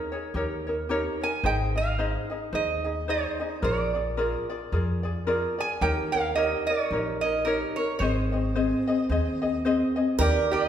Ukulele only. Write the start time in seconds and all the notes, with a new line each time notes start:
Already playing: D#4 G#4 A#4 C#5
0.12 D#4 G#4 C#5
0.35 D#4 G4 A#4 C#5
0.67 D#4 A#4 C#5
0.89 D#4 G4 A#4 C#5
1.21 D#4 A#4 C#5
1.44 D#4 G#4 C5 D#5
1.76 D#4 G#4 D#5
1.99 D#4 G#4 C5 D#5
2.30 D#4 G#4 D#5
2.53 D#4 G#4 C5 D#5
2.84 D#4 G#4 D#5
3.08 D#4 G#4 C5 D#5
3.40 D#4 G#4 D#5
3.62 F4 G#4 A#4 D5
3.95 F4 G#4 D5
4.17 F4 G#4 A#4 D5
4.50 F4 G#4 D5
4.72 F4 G#4 A#4 D5
5.03 F4 G#4 D5
5.27 F4 G#4 A#4 D5
5.59 F4 G#4 D5
5.81 D#4 G4 A#4 C#5
6.14 D#4 A#4 C#5
6.36 D#4 G4 A#4 C#5
6.68 D#4 A#4 C#5
6.91 D#4 G4 A#4 C#5
7.24 D#4 A#4 C#5
7.46 D#4 G4 A#4 C#5
7.78 D#4 A#4 C#5
8.00 C4 G#4 C5 D#5
8.32 C4 G#4 D#5
8.55 C4 G#4 C5 D#5
8.88 C4 G#4 D#5
9.10 C4 G#4 C5 D#5
9.42 C4 G#4 D#5
9.65 C4 G#4 C5 D#5
9.96 C4 G#4 D#5
10.19 D#4 G4 A#4 D5
10.51 D#4 A#4 D5